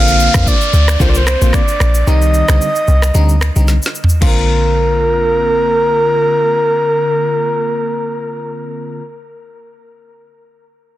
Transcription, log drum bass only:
0.00 0.29 A#1 loud
0.35 0.45 F2 medium
0.73 0.96 D2 medium
1.00 1.36 C2 medium
1.42 1.52 A#1 medium
1.80 2.04 A#1 medium
2.07 2.43 C2 loud
2.49 2.59 C2 medium
2.88 3.11 C2 medium
3.15 3.50 D2 medium
3.56 3.79 C2 medium
4.22 9.02 A#1 loud

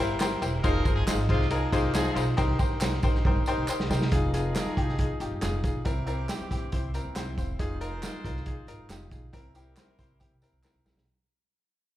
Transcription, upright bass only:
0.00 0.37 G1 medium
0.42 0.61 E1 loud
0.64 0.83 F1 loud
0.85 1.05 G1 loud
1.07 1.26 G#1 loud
1.29 1.67 C2 loud
1.73 2.10 C2 medium
2.16 2.35 B1 medium
2.38 2.57 C2 loud
2.60 2.79 A#1 medium
2.81 3.00 C2 medium
3.03 3.22 A#1 loud
3.25 3.34 G1 loud
3.36 3.45 A#1 loud
3.58 3.67 C2 loud
3.69 muted upright bass stroke soft
3.80 3.89 C2 medium
3.90 4.09 C3 loud
4.12 4.50 F1 loud
4.66 muted upright bass stroke soft
4.77 5.05 C2 medium
5.20 5.30 G#1 medium
5.31 5.41 G1 medium
5.43 5.61 F1 loud
5.64 5.83 B1 medium
5.86 6.23 C2 medium
6.40 muted upright bass stroke soft
6.51 6.70 A#1 loud
6.73 7.01 C2 loud
7.05 7.14 C#2 medium
7.16 7.35 C2 medium
7.38 7.56 E1 medium
7.59 7.97 F1 loud
8.13 muted upright bass stroke soft
8.25 8.53 C2 medium
8.67 8.77 G#1 medium
8.78 8.88 G1 medium
8.89 9.08 F1 medium
9.12 9.30 B1 medium
9.33 9.71 C2 medium
9.88 muted upright bass stroke soft
9.99 10.17 C2 medium
10.31 10.40 C3 medium
10.42 10.51 E2 medium
10.53 10.62 C2 medium
10.74 10.84 C2 medium
10.85 10.95 A#1 medium
10.96 11.06 B1 medium

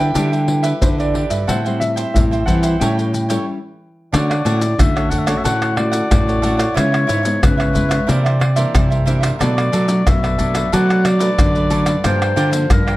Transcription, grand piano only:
0.00 0.61 G5 medium
0.82 0.87 C5 medium
1.00 1.13 D5 medium
1.15 1.46 D5 medium
1.48 1.82 F#5 medium
1.80 2.11 E5 medium
2.14 2.22 E5 medium
2.46 2.77 F#5 medium
2.80 3.42 G5 medium

